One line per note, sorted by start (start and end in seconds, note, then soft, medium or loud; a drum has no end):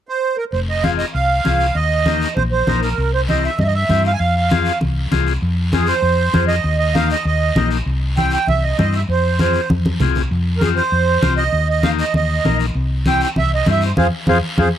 0.09 0.37 C5 medium
0.37 0.44 A#4 medium
0.52 1.02 F1 medium
0.52 0.60 C5 medium
0.52 long guiro medium
0.69 0.83 D#5 medium
0.83 1.05 C4 medium
0.83 1.06 F4 medium
0.83 1.06 G#4 medium
0.83 0.90 F5 medium
0.83 high conga medium
0.83 short guiro medium
0.99 1.06 D#5 medium
0.99 short guiro medium
1.14 1.39 C2 medium
1.14 1.77 F5 loud
1.14 long guiro medium
1.45 1.69 C2 medium
1.45 1.66 C4 medium
1.45 1.67 F4 medium
1.45 1.67 G#4 medium
1.45 high conga medium
1.45 short guiro medium
1.60 short guiro medium
1.75 2.24 D#2 medium
1.75 2.33 D#5 medium
1.75 long guiro medium
2.06 2.28 A#3 medium
2.06 2.28 D#4 medium
2.06 2.28 G4 medium
2.06 high conga medium
2.06 short guiro medium
2.21 short guiro medium
2.36 2.61 A#1 medium
2.36 2.43 C5 medium
2.36 high conga medium
2.36 long guiro medium
2.52 2.80 C5 medium
2.67 2.92 A#1 medium
2.67 2.89 A#3 medium
2.67 2.89 D#4 soft
2.67 2.90 A#4 medium
2.67 high conga medium
2.67 short guiro medium
2.83 3.11 A#4 medium
2.83 short guiro medium
2.98 3.47 C2 medium
2.98 long guiro medium
3.14 3.21 C5 medium
3.29 3.50 C4 medium
3.29 3.51 E4 medium
3.29 3.51 G4 medium
3.29 3.43 D#5 medium
3.29 high conga medium
3.29 short guiro medium
3.43 3.59 E5 medium
3.43 short guiro medium
3.59 3.83 G2 medium
3.59 3.63 D#5 medium
3.59 high conga medium
3.59 long guiro medium
3.64 3.74 D#5 medium
3.64 3.67 E5 medium
3.74 4.03 E5 medium
3.89 4.14 G2 medium
3.89 4.11 C4 medium
3.89 4.11 E4 soft
3.89 4.12 G4 medium
3.89 high conga medium
3.89 short guiro medium
4.04 4.13 F5 medium
4.04 short guiro medium
4.13 4.20 G#5 medium
4.19 4.69 F2 medium
4.19 4.35 F5 medium
4.19 long guiro medium
4.36 4.79 F5 medium
4.49 4.72 C4 medium
4.49 4.72 F4 medium
4.49 4.73 G#4 medium
4.49 high conga medium
4.49 short guiro medium
4.65 short guiro medium
4.81 5.05 C2 medium
4.81 high conga medium
4.81 long guiro medium
5.11 5.36 C2 medium
5.11 5.33 C4 medium
5.11 5.33 F4 medium
5.11 5.33 G#4 medium
5.11 high conga medium
5.11 short guiro medium
5.27 short guiro medium
5.41 5.91 F2 medium
5.41 long guiro medium
5.72 5.95 C4 medium
5.72 5.95 F4 medium
5.72 5.87 G#4 medium
5.72 5.95 G#4 medium
5.72 high conga medium
5.72 short guiro medium
5.87 6.45 C5 medium
5.87 short guiro medium
6.02 6.27 F2 medium
6.02 long guiro medium
6.33 6.58 F2 medium
6.33 6.55 C4 medium
6.33 6.55 F4 medium
6.33 6.56 G#4 medium
6.33 high conga medium
6.33 short guiro medium
6.48 6.77 D#5 medium
6.48 short guiro medium
6.64 7.13 D#2 medium
6.64 long guiro medium
6.78 6.95 D#5 medium
6.94 7.16 A#3 medium
6.94 7.16 D#4 medium
6.94 7.17 G4 medium
6.94 7.09 F5 medium
6.94 high conga medium
6.94 short guiro medium
7.10 7.25 D#5 medium
7.10 short guiro medium
7.25 7.50 D#2 medium
7.25 7.69 D#5 medium
7.25 long guiro medium
7.55 7.80 A#1 loud
7.55 7.78 A#3 medium
7.55 7.78 D#4 medium
7.55 7.78 G4 medium
7.55 high conga medium
7.55 short guiro medium
7.71 short guiro medium
7.86 8.35 C2 medium
7.86 long guiro medium
8.16 8.39 C4 medium
8.16 8.39 E4 medium
8.16 8.39 G4 medium
8.16 8.32 G5 loud
8.16 high conga medium
8.16 short guiro medium
8.31 8.47 G5 medium
8.31 short guiro medium
8.47 8.72 C2 medium
8.47 8.64 E5 medium
8.47 high conga medium
8.47 long guiro medium
8.63 8.77 D#5 medium
8.77 9.03 G2 loud
8.77 9.00 C4 medium
8.77 9.00 E4 medium
8.77 9.00 G4 medium
8.77 8.94 D#5 medium
8.77 high conga medium
8.77 short guiro medium
8.93 9.01 E5 medium
8.93 short guiro medium
9.08 9.57 F2 medium
9.08 9.40 C5 medium
9.08 long guiro medium
9.39 9.61 C4 medium
9.39 9.61 F4 medium
9.39 9.61 G#4 medium
9.39 9.69 C5 medium
9.39 high conga medium
9.39 short guiro medium
9.54 short guiro medium
9.69 9.95 F2 medium
9.69 high conga medium
9.69 long guiro medium
9.86 high conga medium
10.00 10.25 C2 loud
10.00 10.22 C4 medium
10.00 10.22 F4 medium
10.00 10.23 G#4 medium
10.00 low conga medium
10.00 short guiro medium
10.15 low conga medium
10.15 short guiro medium
10.31 10.80 F2 medium
10.31 long guiro medium
10.58 10.83 C4 medium
10.58 10.61 A#4 medium
10.58 high conga medium
10.58 short guiro medium
10.62 10.83 F4 medium
10.62 10.83 G4 medium
10.62 10.69 G#4 medium
10.77 11.34 C5 medium
10.77 short guiro medium
10.91 11.16 F2 medium
10.91 long guiro medium
11.22 11.47 C2 medium
11.22 11.44 C4 medium
11.22 11.44 F4 medium
11.22 11.44 G4 medium
11.22 high conga medium
11.22 short guiro medium
11.37 11.68 D#5 medium
11.37 short guiro medium
11.52 12.02 D#2 medium
11.52 long guiro medium
11.70 11.83 D#5 medium
11.82 12.05 A#3 medium
11.82 12.05 D#4 medium
11.82 12.05 G4 medium
11.82 11.90 F5 medium
11.82 high conga medium
11.82 short guiro medium
11.99 12.14 D#5 medium
11.99 short guiro medium
12.14 12.38 D#2 medium
12.14 12.57 D#5 medium
12.14 high conga medium
12.14 long guiro medium
12.44 12.69 A#1 medium
12.44 12.66 A#3 medium
12.44 12.66 D#4 soft
12.44 12.66 A#4 medium
12.44 high conga medium
12.44 short guiro medium
12.59 short guiro medium
12.75 13.24 C2 medium
12.75 long guiro medium
13.06 13.28 C4 medium
13.06 13.28 E4 medium
13.06 13.28 G4 medium
13.06 13.21 G5 loud
13.06 high conga medium
13.06 short guiro medium
13.21 13.30 G5 medium
13.21 short guiro medium
13.36 13.61 C2 medium
13.36 13.51 E5 medium
13.36 high conga medium
13.36 long guiro medium
13.54 13.67 D#5 medium
13.66 13.91 G2 loud
13.66 13.88 C4 medium
13.66 13.89 E4 medium
13.66 13.89 G4 medium
13.66 high conga medium
13.66 short guiro medium
13.71 13.83 E5 loud
13.81 short guiro medium
13.86 13.92 C5 medium
13.96 14.09 F2 medium
13.96 14.08 C4 medium
13.96 14.07 F4 medium
13.96 14.07 G#4 medium
13.96 14.08 G#4 medium
13.96 14.07 C5 medium
13.96 14.07 F5 medium
13.96 high conga medium
13.96 long guiro medium
14.26 14.39 F2 medium
14.26 14.38 C4 medium
14.26 14.38 F4 loud
14.26 14.38 G#4 medium
14.26 14.38 G#4 loud
14.26 14.38 C5 medium
14.26 14.38 F5 medium
14.26 high conga medium
14.26 long guiro loud
14.56 14.70 F2 medium
14.56 14.69 C4 medium
14.56 14.68 F4 medium
14.56 14.69 G#4 medium
14.56 14.69 C5 medium
14.56 14.69 F5 medium
14.56 high conga loud
14.56 long guiro medium